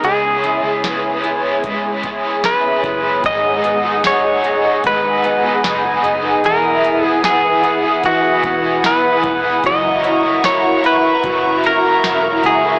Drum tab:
HH |xxxxxxxx|xxxxxxxx|xxxxxxxx|xxxxxxxx|
TB |--------|--x---x-|--x---x-|--x---x-|
SD |--o---o-|--o---o-|--o---o-|--o---o-|
BD |----oo-o|o---o---|----oo-o|o---o---|